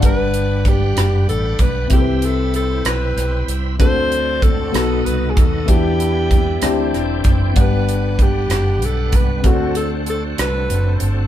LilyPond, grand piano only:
<<
  \new Staff \with { instrumentName = "Grand piano" } { \time 6/8 \key g \major \tempo 4. = 64 <d' g' b' fis''>2. | <c' e' g' a' b'>2. | <c' d' fis' a'>4. <b dis' fis' a'>4. | <b d' e' fis' g'>4. <c' d' e' g'>4. |
<b d' g' fis''>2. | <c' d' fis' a'>2. | }
  \new Staff \with { instrumentName = "Grand piano" } { \clef bass \time 6/8 \key g \major g,4. r4. | c4. r4. | d4. b,4. | e4. d4. |
g,4. r4. | d4. r4. | }
>>